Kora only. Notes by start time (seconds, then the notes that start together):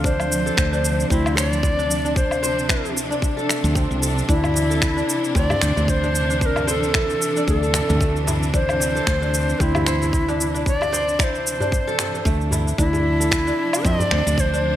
Already playing: A3 F4 A4
0.05 D4
0.46 A4
0.73 D4
1.11 C4
1.37 C5
1.79 D4
2.05 D4
2.43 C5
2.69 E4
3.11 D4
3.37 A4
3.49 A3
3.76 C4
4.02 A4
4.29 D4
4.70 A4
4.97 D4
5.35 C4
5.61 C5
6.03 D4
6.30 D4
6.67 C5
6.95 E4
7.37 D4
7.63 A4
8.01 A3
8.27 E4
8.54 D4
8.95 A4
9.22 D4
9.60 C4
9.87 C5
10.28 D4
10.54 D4
10.93 C5
11.19 E4
11.61 D4
11.87 A4
12.25 A3
12.52 E4
12.78 D4
13.20 A4
13.47 D4
13.85 C4
14.11 C5
14.54 D4